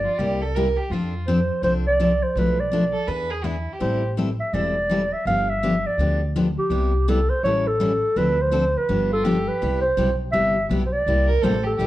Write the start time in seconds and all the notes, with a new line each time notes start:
Already playing: D5
0.04 F4
0.18 C2 C3 G3 A#3 E4 G4
0.42 A4
0.55 C3 G3 A#3 E4 G4 A#4
0.77 G4
0.90 F2 F3 C4 D4 F4 A4
1.27 F3 C4 D4 A4 C5
1.62 C2 F3 C4 D4 A4 C5
1.88 D5
2.00 F3 C4 D4 A4
2.24 C5
2.35 B1 B2 F3 A3 D4 A4 B4
2.60 D5
2.72 B2 F3 A3 D4 A4
2.93 A4
3.07 E2 E3 B3 D4 G#4 B4
3.30 G#4
3.44 E3 B3 D4 E4 G#4
3.73 G4
3.80 A1 E3 G3 C4 E4 A4 C5
4.17 E3 G3 C4 E4 A4
4.40 E5
4.53 E1 E3 G3 C4 E4 A4 D5
4.89 E3 G3 C4 E4 A4
5.13 E5
5.25 G1 D3 F3 B3 D4 G4 F5
5.49 E5
5.63 D3 F3 B3 D4 G4
5.87 D5
5.98 D2 D3 F3 B3 D4 G4
6.36 D3 F3 B3 D4 G4
6.59 G4
6.70 C2 C3 G3 B3 E4 G4
7.08 C3 G3 B3 E4 G4 A4
7.29 C5
7.43 A1 E3 G3 C#4 E4 A4 C#5
7.68 A4
7.80 E3 G3 C#4 E4 A4
8.16 D2 D3 F3 C4 D4 A4 B4
8.42 C5
8.52 D3 F3 C4 D4 A4
8.77 B4
8.88 G1 D3 F3 B3 D4 G4
9.12 F4 A4
9.23 D3 F3 B3 D4 G4
9.48 B4
9.61 C2 C3 G3 B3 E4 G4
9.81 C5
9.97 B1 C3 G3 B3 E4 G4
10.32 G1 C3 G3 B3 E4 G4 E5
10.69 B1 C3 G3 B3 E4 G4
10.86 C5
10.93 D5
11.06 C2 C3 G3 A#3 E4 G4
11.27 A#4
11.42 A1 C3 G3 A#3 E4 G4 A4 C5
11.64 G4 A4
11.77 A#1 C3 G3 A#3 E4 G4
11.81 G4